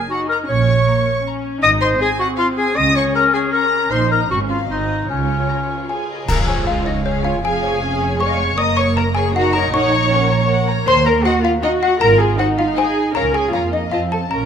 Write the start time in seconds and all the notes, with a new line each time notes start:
Already playing: A#3 G#5
0.10 D#4 F#4 F#5 A#5
0.29 A#4 A#5
0.48 A#1 A#2 C#4 C#5 C#6
0.87 A#3 A#5
1.24 C#4 A#5
1.62 G#1 G#2 D#4 D#5 D#6
1.81 C5 C6
1.99 C4 G#4 G#5 C6
2.19 F#4 F#5
2.38 F4 F5 C6
2.57 G#4 G#5
2.76 C#2 C#3 C#4 D#5 D#6
2.96 C#5 C#6
3.15 A#4 A#5 C#6
3.34 G#4 G#5
3.52 A#4 A#5 C#6
3.91 A#1 A#2 D#4 C5 C6 C#6
4.11 A#4 A#5
4.30 G#1 G#2 C#4 F#4 F#5 C#6
4.49 F4 F5
4.69 G#1 G#2 C4 D#4 D#5 C6
5.09 C#2 C#3 C#4 F4 C#5
5.50 A#5
5.70 G#5
5.89 G#4 F5 G#5
6.09 D#5
6.28 C#2 F3 G#4 A#4 F5 A#5, concert bass drum, crash
6.47 G#4 C#5 G#5
6.65 G#3 F4 G#4 F5
6.84 D#4 C#5 D#5 G#5
7.04 C#4 G#4 C#5 F5
7.23 F4 C#5 F5 G#5
7.43 F1 F3 G#4 F5 G#5
7.64 C#5 F5
7.81 C#4 F5 G#5
8.01 C#5 F5
8.20 G#3 C#5 F5 G#5 C#6
8.27 D#5
8.34 C#5
8.40 C#5 F5
8.58 F#1 A#3 A#4 D#5 A#5 D#6
8.77 C#5 C#6
8.96 A#4 A#5
9.15 G#4 C#5 G#5 C#6
9.34 D#4 F#4 A#4 F#5 A#5
9.53 A#4 C#5 A#5 C#6
9.72 A#1 A#4 C#5 F#5 C#6
9.92 C#5 A#5
10.11 C#4 A#4 F#5
10.31 C#5 A#5
10.48 A#3 A#4 F#5
10.68 C#5 A#5
10.86 D#2 C5 C6
11.06 A#4 A#5
11.24 F#4 D#5 F#5
11.42 F4 F5
11.62 D#4 F#4 D#5 F#5
11.82 F#4 F#5
11.99 G#1 F4 A#4 A#5
12.18 G#4 G#5
12.38 D#4 F#4 C5 F#5
12.58 F4 F5
12.76 G#4 C5 F#5 G#5
13.14 C#2 C#4 A#4 C#5 F5 A#5
13.33 G#4 G#5
13.52 F2 A#3 F4 C#5 F5 A#5
13.72 D#4 D#5
13.91 F2 C4 F4 D#5 F5 A5
14.11 A4 A5
14.29 A#1 C#4 A#4 A#5